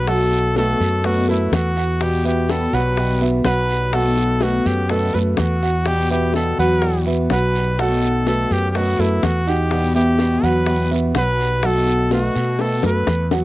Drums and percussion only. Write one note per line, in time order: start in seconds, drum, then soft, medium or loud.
0.07 high bongo medium
0.07 long guiro medium
0.32 high bongo soft
0.56 high bongo medium
0.56 short guiro medium
0.80 high bongo soft
0.80 short guiro medium
1.04 high bongo medium
1.04 long guiro medium
1.28 high bongo soft
1.53 high bongo medium
1.53 low bongo medium
1.53 short guiro medium
1.77 short guiro medium
2.01 high bongo medium
2.01 long guiro medium
2.49 high bongo medium
2.49 short guiro medium
2.73 short guiro medium
2.97 high bongo medium
2.97 long guiro medium
3.45 high bongo medium
3.45 low bongo medium
3.45 short guiro medium
3.70 short guiro medium
3.93 high bongo medium
3.93 long guiro medium
4.17 high bongo soft
4.41 high bongo medium
4.41 short guiro medium
4.65 high bongo soft
4.65 short guiro medium
4.89 high bongo medium
4.89 long guiro medium
5.13 high bongo soft
5.37 high bongo medium
5.37 low bongo medium
5.37 short guiro medium
5.63 short guiro medium
5.86 high bongo medium
5.86 long guiro medium
6.34 high bongo medium
6.34 short guiro medium
6.59 short guiro medium
6.82 high bongo medium
6.82 long guiro medium
7.30 high bongo medium
7.30 low bongo medium
7.30 short guiro medium
7.55 short guiro medium
7.79 high bongo medium
7.79 long guiro medium
8.03 high bongo soft
8.27 high bongo medium
8.27 short guiro medium
8.51 high bongo soft
8.51 short guiro medium
8.75 high bongo medium
8.75 long guiro medium
8.99 high bongo soft
9.23 high bongo medium
9.23 low bongo medium
9.23 short guiro medium
9.48 short guiro medium
9.71 high bongo medium
9.71 long guiro medium
10.19 high bongo medium
10.19 short guiro medium
10.44 short guiro medium
10.66 high bongo medium
10.66 long guiro medium
11.15 high bongo medium
11.15 low bongo medium
11.15 short guiro medium
11.40 short guiro medium
11.63 high bongo medium
11.63 long guiro medium
11.87 high bongo soft
12.11 high bongo medium
12.11 short guiro medium
12.35 high bongo soft
12.35 short guiro medium
12.59 high bongo medium
12.59 long guiro medium
12.83 low bongo loud
13.07 low bongo loud
13.07 short guiro medium
13.31 low bongo medium
13.31 short guiro medium